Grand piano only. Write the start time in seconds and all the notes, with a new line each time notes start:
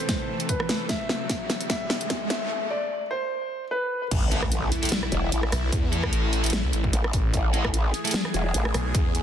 Already playing: C5
0.49 B4
0.89 E5
1.70 E5
2.30 E5
2.70 D5
3.11 C5
3.71 B4